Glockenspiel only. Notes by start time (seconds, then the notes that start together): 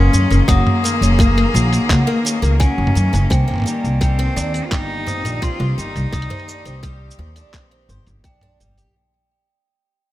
Already playing: C6
0.48 D#6
2.60 G#5
3.32 G5
4.03 G5
5.08 D#6
5.43 C6
6.13 D#6
8.25 G5